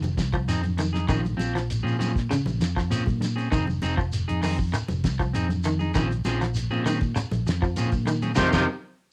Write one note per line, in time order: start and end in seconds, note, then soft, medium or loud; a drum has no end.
0.00 0.16 F1 medium
0.00 0.11 D#3 medium
0.00 muted clean electric guitar stroke soft
0.00 closed hi-hat soft
0.00 high conga medium
0.00 shekere soft
0.17 0.46 C2 medium
0.17 muted clean electric guitar stroke soft
0.17 kick medium
0.17 snare medium
0.17 closed hi-hat soft
0.17 shekere medium
0.33 0.57 F3 medium
0.33 kick medium
0.33 closed hi-hat soft
0.33 shekere soft
0.48 1.05 F2 medium
0.48 0.64 C4 medium
0.48 0.63 D#4 medium
0.48 0.62 G#4 medium
0.48 snare soft
0.48 closed hi-hat medium
0.48 shekere medium
0.63 muted clean electric guitar stroke soft
0.63 closed hi-hat soft
0.63 high conga medium
0.63 shekere soft
0.77 1.02 D#3 medium
0.77 muted clean electric guitar stroke soft
0.77 closed hi-hat soft
0.77 high conga medium
0.77 shekere medium
0.93 1.08 D#4 soft
0.93 1.07 G#4 soft
0.93 snare soft
0.93 high conga medium
0.93 shekere soft
1.08 1.37 A#1 medium
1.08 1.32 D#3 medium
1.08 1.24 F3 medium
1.08 1.23 C4 medium
1.08 1.22 C#4 medium
1.08 1.22 G#4 medium
1.08 kick medium
1.08 closed hi-hat medium
1.08 shekere medium
1.24 muted clean electric guitar stroke soft
1.24 closed hi-hat soft
1.24 high conga medium
1.24 shekere soft
1.37 1.81 A#1 medium
1.37 1.54 F3 medium
1.37 1.54 C4 medium
1.37 closed hi-hat soft
1.37 high conga medium
1.37 shekere medium
1.53 1.78 F3 medium
1.53 muted clean electric guitar stroke soft
1.53 snare soft
1.53 closed hi-hat soft
1.57 shekere soft
1.70 closed hi-hat medium
1.70 shekere medium
1.83 2.26 A#2 medium
1.83 1.98 F3 medium
1.83 1.98 C4 medium
1.83 1.98 C#4 medium
1.83 1.98 G#4 medium
1.88 shekere soft
1.99 2.15 F3 medium
1.99 2.14 C4 medium
1.99 2.13 C#4 medium
1.99 2.13 G#4 medium
1.99 closed hi-hat soft
1.99 high conga medium
1.99 shekere medium
2.14 muted clean electric guitar stroke soft
2.14 kick medium
2.14 snare soft
2.14 closed hi-hat soft
2.14 shekere soft
2.29 2.54 C#3 medium
2.29 muted fingered electric bass stroke soft
2.29 muted clean electric guitar stroke soft
2.29 snare soft
2.29 closed hi-hat medium
2.29 shekere medium
2.45 2.59 A#1 medium
2.45 muted clean electric guitar stroke soft
2.45 closed hi-hat soft
2.45 high conga medium
2.45 shekere soft
2.59 2.88 F2 medium
2.59 muted clean electric guitar stroke soft
2.59 snare medium
2.59 closed hi-hat soft
2.59 shekere medium
2.77 2.99 F3 medium
2.77 kick medium
2.77 snare soft
2.77 shekere soft
2.90 3.48 A#2 medium
2.90 3.07 F3 medium
2.90 3.06 C4 medium
2.90 3.05 C#4 medium
2.90 3.05 G#4 medium
2.90 closed hi-hat medium
2.90 shekere medium
3.06 muted clean electric guitar stroke soft
3.06 kick medium
3.06 closed hi-hat soft
3.06 high conga medium
3.06 shekere soft
3.21 muted clean electric guitar stroke soft
3.21 snare soft
3.21 closed hi-hat medium
3.21 high conga medium
3.21 shekere medium
3.36 3.50 C4 soft
3.36 3.51 C#4 medium
3.36 3.51 G#4 medium
3.36 closed hi-hat soft
3.40 shekere soft
3.51 3.80 F1 medium
3.51 3.75 D#3 medium
3.51 3.67 C4 medium
3.51 3.67 D#4 medium
3.51 3.66 G#4 medium
3.51 kick medium
3.51 closed hi-hat medium
3.51 shekere medium
3.67 muted clean electric guitar stroke soft
3.67 high conga medium
3.67 shekere soft
3.82 4.25 F1 medium
3.82 3.98 C4 medium
3.82 3.97 D#4 medium
3.82 3.96 G#4 medium
3.82 closed hi-hat soft
3.82 high conga medium
3.82 shekere medium
3.97 4.21 F3 medium
3.97 muted clean electric guitar stroke soft
3.97 kick medium
3.97 shekere soft
4.13 closed hi-hat medium
4.13 shekere medium
4.28 4.71 F2 medium
4.28 4.42 D#4 medium
4.28 4.42 G#4 medium
4.28 closed hi-hat soft
4.28 shekere soft
4.42 4.66 D#3 medium
4.42 4.58 C4 medium
4.42 4.58 D#4 medium
4.42 4.58 G#4 medium
4.42 open hi-hat medium
4.42 high conga medium
4.42 shekere medium
4.58 muted clean electric guitar stroke soft
4.58 kick medium
4.58 shekere soft
4.72 muted clean electric guitar stroke soft
4.72 muted fingered electric bass stroke soft
4.72 closed hi-hat medium
4.72 shekere medium
4.88 5.03 F1 medium
4.88 muted clean electric guitar stroke medium
4.88 closed hi-hat soft
4.88 high conga medium
4.88 shekere soft
5.04 5.32 C2 medium
5.04 muted clean electric guitar stroke soft
5.04 kick medium
5.04 snare medium
5.04 closed hi-hat soft
5.04 shekere medium
5.19 5.42 F3 medium
5.19 kick medium
5.19 closed hi-hat soft
5.19 shekere soft
5.33 5.91 F2 medium
5.33 5.49 C4 medium
5.33 5.49 D#4 medium
5.33 5.49 G#4 medium
5.33 closed hi-hat medium
5.33 shekere medium
5.49 muted clean electric guitar stroke soft
5.49 closed hi-hat soft
5.49 high conga medium
5.49 shekere soft
5.63 5.88 D#3 medium
5.63 muted clean electric guitar stroke soft
5.63 closed hi-hat soft
5.63 shekere medium
5.79 5.94 D#4 soft
5.79 5.94 G#4 medium
5.79 high conga medium
5.79 shekere soft
5.94 6.23 A#1 medium
5.94 6.18 D#3 medium
5.94 6.10 F3 medium
5.94 6.11 C4 medium
5.94 6.09 C#4 medium
5.94 6.09 G#4 medium
5.94 kick medium
5.94 snare soft
5.94 closed hi-hat medium
5.94 shekere medium
6.10 muted clean electric guitar stroke soft
6.10 closed hi-hat soft
6.10 shekere soft
6.25 6.67 A#1 medium
6.25 6.41 F3 medium
6.25 6.41 C4 medium
6.25 6.41 C#4 medium
6.25 6.41 G#4 medium
6.25 snare soft
6.25 closed hi-hat soft
6.25 high conga medium
6.25 shekere medium
6.41 6.64 F3 medium
6.41 muted clean electric guitar stroke soft
6.41 snare soft
6.41 closed hi-hat soft
6.41 shekere soft
6.55 closed hi-hat medium
6.55 shekere medium
6.71 7.12 A#2 medium
6.71 6.85 F3 medium
6.71 6.86 C4 medium
6.71 6.86 C#4 medium
6.71 6.86 G#4 medium
6.71 shekere soft
6.86 7.09 D#3 medium
6.86 7.01 C4 medium
6.86 7.01 C#4 medium
6.86 7.00 G#4 medium
6.86 muted clean electric guitar stroke medium
6.86 closed hi-hat soft
6.86 high conga medium
6.86 shekere medium
7.01 muted clean electric guitar stroke soft
7.01 kick medium
7.01 closed hi-hat soft
7.01 shekere soft
7.16 muted fingered electric bass stroke soft
7.16 muted clean electric guitar stroke soft
7.16 closed hi-hat medium
7.16 shekere medium
7.31 7.45 A#1 medium
7.31 muted clean electric guitar stroke soft
7.31 closed hi-hat soft
7.31 high conga medium
7.31 shekere soft
7.47 7.75 F2 medium
7.47 muted clean electric guitar stroke soft
7.47 snare medium
7.47 closed hi-hat soft
7.47 shekere medium
7.62 7.85 F3 medium
7.62 kick medium
7.62 shekere soft
7.76 8.33 A#2 medium
7.76 7.92 F3 medium
7.76 7.92 C4 medium
7.76 7.91 C#4 medium
7.76 7.91 G#4 medium
7.76 closed hi-hat medium
7.76 shekere medium
7.92 muted clean electric guitar stroke soft
7.92 kick medium
7.92 closed hi-hat soft
7.92 high conga medium
7.92 shekere soft
8.05 8.30 D#3 medium
8.05 muted clean electric guitar stroke soft
8.05 closed hi-hat soft
8.05 high conga medium
8.05 shekere medium
8.22 8.34 C4 soft
8.22 8.35 C#4 medium
8.22 8.35 G#4 medium
8.22 closed hi-hat soft
8.22 high conga medium
8.22 shekere soft
8.35 8.49 F2 medium
8.35 8.47 C3 medium
8.35 8.48 D#3 medium
8.35 8.47 F3 medium
8.35 8.46 C4 medium
8.35 8.46 D#4 loud
8.35 8.46 F4 medium
8.35 kick medium
8.35 snare medium
8.35 high conga medium
8.35 shekere medium
8.51 8.64 F2 medium
8.51 8.63 C3 medium
8.51 8.63 D#3 loud
8.51 8.63 F3 medium
8.51 8.62 C4 loud
8.51 8.62 D#4 medium
8.51 8.61 F4 medium
8.51 kick medium
8.51 snare medium
8.51 high conga loud
8.51 shekere medium